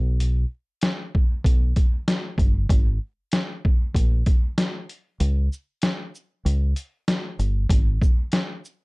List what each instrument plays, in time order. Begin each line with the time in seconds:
Already playing: fingered electric bass B1
0.20 closed hi-hat
0.82 snare, closed hi-hat
1.15 kick
1.44 fingered electric bass B1, kick, closed hi-hat
1.76 kick, closed hi-hat
2.08 snare, closed hi-hat
2.38 fingered electric bass G1, kick, closed hi-hat
2.69 fingered electric bass G#1, kick, closed hi-hat
3.32 snare, closed hi-hat
3.65 kick
3.94 fingered electric bass A#1, kick, closed hi-hat
4.26 kick, closed hi-hat
4.58 snare, closed hi-hat
4.89 closed hi-hat
5.20 fingered electric bass C#2, closed hi-hat
5.53 shaker
5.82 snare, closed hi-hat
6.15 shaker
6.45 fingered electric bass C#2, closed hi-hat
6.76 closed hi-hat, shaker
7.08 snare, closed hi-hat
7.39 fingered electric bass G1, closed hi-hat, shaker
7.70 fingered electric bass G#1, kick, closed hi-hat
8.02 kick, shaker
8.32 snare, closed hi-hat
8.65 shaker